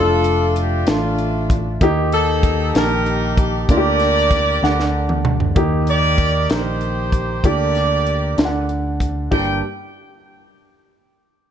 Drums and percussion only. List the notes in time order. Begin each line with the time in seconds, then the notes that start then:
0.24 closed hi-hat
0.56 closed hi-hat
0.87 snare, closed hi-hat
1.18 closed hi-hat
1.50 kick, closed hi-hat
1.81 kick, closed hi-hat
2.12 closed hi-hat
2.43 kick, closed hi-hat
2.75 snare, closed hi-hat
3.06 closed hi-hat
3.37 kick, closed hi-hat
3.69 kick, closed hi-hat
4.00 snare, closed hi-hat
4.31 kick, closed hi-hat
4.64 snare
4.80 snare
5.09 mid tom
5.25 mid tom
5.40 floor tom
5.56 kick, closed hi-hat
5.87 closed hi-hat
6.18 kick, closed hi-hat
6.50 snare, closed hi-hat
6.81 closed hi-hat
7.12 kick, closed hi-hat
7.44 kick, closed hi-hat
7.75 snare, closed hi-hat
8.07 closed hi-hat
8.38 snare, closed hi-hat
8.69 closed hi-hat
9.00 kick, closed hi-hat
9.32 kick, crash